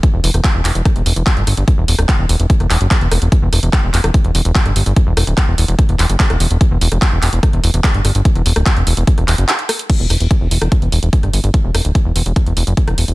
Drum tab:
CC |----------------|----------------|----------------|----------------|
HH |x-oxx-oxxxoxxxox|x-oxx-oxxxoxxxox|x-oxx-oxxxoxxxox|x-oxx-oxxxoxxxox|
CP |----x-x-----x---|----x-----x-x---|----x-x-----x---|----x-----x-x---|
SD |---r----r-----r-|---r-----r----r-|--r----r-----r--|--r-----r----r--|
BD |o---o---o---o---|o---o---o---o---|o---o---o---o---|o---o---o---o---|

CC |----------------|----------------|x---------------|----------------|
HH |x-oxx-oxxxoxxxox|xxoxxxoxxxoxxxox|x-oxx-oxxxoxxxox|x-oxx-oxxxoxxxox|
CP |----x-x-----x---|----x-----x-x---|----------------|----------------|
SD |---r----r-----r-|---r-----r----r-|--r----r-----r--|--r-----r----r--|
BD |o---o---o---o---|o---o---o-------|o---o---o---o---|o---o---o---o---|